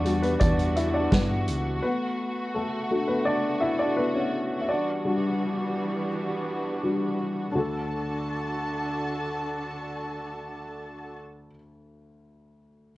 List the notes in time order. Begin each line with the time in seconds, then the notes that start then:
Already playing: E2 E3 G3 B3 D4 F#4 B4 D5
0.04 G3 D4 F#4, closed hi-hat
0.22 B3 B4, closed hi-hat
0.39 E2 D4 D5, kick, closed hi-hat
0.59 closed hi-hat
0.76 E4 E5, closed hi-hat
0.94 D4 D5
1.11 G2 B3 B4, kick, snare, closed hi-hat
1.48 C#2, closed hi-hat
1.83 A3 B3 B4
2.55 A3 A4
2.91 A3 D4 F#4
3.08 B3 B4
3.26 D4 D5
3.61 E4 E5
3.79 D4 D5
3.97 B3 B4
4.15 C#4 C#5
4.61 E5
4.69 E3 G3 B3 D4 D5
5.05 G3 D4 F#4
6.83 G3 D4 F#4
7.51 D2 D3 D4 F#4 A4 A5
7.58 A4